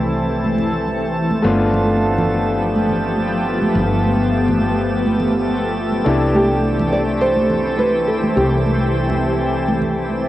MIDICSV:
0, 0, Header, 1, 7, 480
1, 0, Start_track
1, 0, Key_signature, 0, "major"
1, 0, Tempo, 576923
1, 1205, Time_signature, 4, 2, 24, 8
1, 8556, End_track
2, 0, Start_track
2, 0, Title_t, "Synth texture"
2, 0, Program_c, 0, 99
2, 0, Note_on_c, 0, 81, 78
2, 8556, Note_off_c, 0, 81, 0
2, 8556, End_track
3, 0, Start_track
3, 0, Title_t, "Nylon-string guitar"
3, 0, Program_c, 1, 24
3, 5289, Note_on_c, 1, 67, 83
3, 5763, Note_on_c, 1, 74, 95
3, 5781, Note_off_c, 1, 67, 0
3, 5828, Note_off_c, 1, 74, 0
3, 6000, Note_on_c, 1, 72, 98
3, 6475, Note_off_c, 1, 72, 0
3, 6479, Note_on_c, 1, 71, 88
3, 6719, Note_on_c, 1, 69, 72
3, 6729, Note_off_c, 1, 71, 0
3, 6784, Note_off_c, 1, 69, 0
3, 6956, Note_on_c, 1, 67, 76
3, 7887, Note_off_c, 1, 67, 0
3, 8556, End_track
4, 0, Start_track
4, 0, Title_t, "Grand piano"
4, 0, Program_c, 2, 0
4, 0, Control_c, 2, 64, 127
4, 0, Note_on_c, 2, 57, 61
4, 0, Note_on_c, 2, 62, 57
4, 0, Note_on_c, 2, 64, 58
4, 0, Note_on_c, 2, 67, 68
4, 1171, Note_off_c, 2, 57, 0
4, 1176, Note_off_c, 2, 62, 0
4, 1182, Note_off_c, 2, 64, 0
4, 1185, Note_on_c, 2, 57, 67
4, 1187, Note_off_c, 2, 67, 0
4, 1195, Note_on_c, 2, 59, 62
4, 1206, Note_on_c, 2, 62, 58
4, 1214, Control_c, 2, 64, 0
4, 1218, Note_on_c, 2, 65, 71
4, 1360, Control_c, 2, 64, 127
4, 5008, Note_off_c, 2, 57, 0
4, 5014, Note_off_c, 2, 59, 0
4, 5019, Note_off_c, 2, 62, 0
4, 5025, Note_off_c, 2, 65, 0
4, 5029, Note_on_c, 2, 57, 60
4, 5039, Note_on_c, 2, 62, 61
4, 5050, Note_on_c, 2, 64, 59
4, 5055, Control_c, 2, 64, 0
4, 5059, Note_on_c, 2, 67, 68
4, 5181, Control_c, 2, 64, 127
4, 8556, Note_off_c, 2, 57, 0
4, 8556, Note_off_c, 2, 62, 0
4, 8556, Note_off_c, 2, 64, 0
4, 8556, Note_off_c, 2, 67, 0
4, 8556, End_track
5, 0, Start_track
5, 0, Title_t, "Ambient pad"
5, 0, Program_c, 3, 92
5, 0, Note_on_c, 3, 52, 74
5, 0, Note_on_c, 3, 57, 68
5, 0, Note_on_c, 3, 60, 68
5, 0, Note_on_c, 3, 69, 84
5, 1170, Note_off_c, 3, 52, 0
5, 1170, Note_off_c, 3, 60, 0
5, 1185, Note_off_c, 3, 69, 0
5, 1199, Note_on_c, 3, 53, 73
5, 1200, Note_on_c, 3, 59, 67
5, 1200, Note_on_c, 3, 67, 82
5, 5009, Note_off_c, 3, 53, 0
5, 5009, Note_off_c, 3, 59, 0
5, 5044, Note_on_c, 3, 52, 77
5, 5045, Note_on_c, 3, 60, 75
5, 8556, Note_off_c, 3, 52, 0
5, 8556, Note_off_c, 3, 57, 0
5, 8556, Note_off_c, 3, 60, 0
5, 8556, Note_off_c, 3, 67, 0
5, 8556, End_track
6, 0, Start_track
6, 0, Title_t, "Fretless electric bass"
6, 0, Program_c, 4, 35
6, 0, Note_on_c, 4, 36, 73
6, 1182, Note_off_c, 4, 36, 0
6, 1201, Note_on_c, 4, 31, 76
6, 3101, Note_off_c, 4, 31, 0
6, 3122, Note_on_c, 4, 31, 73
6, 5021, Note_off_c, 4, 31, 0
6, 5042, Note_on_c, 4, 36, 75
6, 6941, Note_off_c, 4, 36, 0
6, 6963, Note_on_c, 4, 36, 71
6, 8556, Note_off_c, 4, 36, 0
6, 8556, End_track
7, 0, Start_track
7, 0, Title_t, "Drums"
7, 370, Note_on_c, 9, 63, 86
7, 453, Note_off_c, 9, 63, 0
7, 485, Note_on_c, 9, 64, 69
7, 569, Note_off_c, 9, 64, 0
7, 729, Note_on_c, 9, 63, 51
7, 812, Note_off_c, 9, 63, 0
7, 1088, Note_on_c, 9, 63, 75
7, 1171, Note_off_c, 9, 63, 0
7, 1447, Note_on_c, 9, 63, 88
7, 1530, Note_off_c, 9, 63, 0
7, 1817, Note_on_c, 9, 63, 55
7, 1817, Note_on_c, 9, 64, 86
7, 1900, Note_off_c, 9, 63, 0
7, 1900, Note_off_c, 9, 64, 0
7, 2296, Note_on_c, 9, 63, 84
7, 2379, Note_off_c, 9, 63, 0
7, 2408, Note_on_c, 9, 64, 66
7, 2491, Note_off_c, 9, 64, 0
7, 2644, Note_on_c, 9, 63, 61
7, 2728, Note_off_c, 9, 63, 0
7, 3013, Note_on_c, 9, 63, 85
7, 3096, Note_off_c, 9, 63, 0
7, 3366, Note_on_c, 9, 63, 78
7, 3449, Note_off_c, 9, 63, 0
7, 3730, Note_on_c, 9, 64, 81
7, 3735, Note_on_c, 9, 63, 55
7, 3813, Note_off_c, 9, 64, 0
7, 3818, Note_off_c, 9, 63, 0
7, 4207, Note_on_c, 9, 63, 83
7, 4291, Note_off_c, 9, 63, 0
7, 4323, Note_on_c, 9, 64, 60
7, 4406, Note_off_c, 9, 64, 0
7, 4564, Note_on_c, 9, 63, 51
7, 4647, Note_off_c, 9, 63, 0
7, 4927, Note_on_c, 9, 63, 77
7, 5010, Note_off_c, 9, 63, 0
7, 5282, Note_on_c, 9, 63, 89
7, 5365, Note_off_c, 9, 63, 0
7, 5652, Note_on_c, 9, 63, 56
7, 5653, Note_on_c, 9, 64, 82
7, 5735, Note_off_c, 9, 63, 0
7, 5737, Note_off_c, 9, 64, 0
7, 6130, Note_on_c, 9, 63, 76
7, 6214, Note_off_c, 9, 63, 0
7, 6239, Note_on_c, 9, 64, 68
7, 6322, Note_off_c, 9, 64, 0
7, 6482, Note_on_c, 9, 63, 47
7, 6565, Note_off_c, 9, 63, 0
7, 6851, Note_on_c, 9, 63, 85
7, 6935, Note_off_c, 9, 63, 0
7, 7205, Note_on_c, 9, 63, 75
7, 7289, Note_off_c, 9, 63, 0
7, 7569, Note_on_c, 9, 64, 71
7, 7572, Note_on_c, 9, 63, 57
7, 7652, Note_off_c, 9, 64, 0
7, 7655, Note_off_c, 9, 63, 0
7, 8056, Note_on_c, 9, 63, 82
7, 8139, Note_off_c, 9, 63, 0
7, 8168, Note_on_c, 9, 64, 64
7, 8251, Note_off_c, 9, 64, 0
7, 8400, Note_on_c, 9, 63, 49
7, 8484, Note_off_c, 9, 63, 0
7, 8556, End_track
0, 0, End_of_file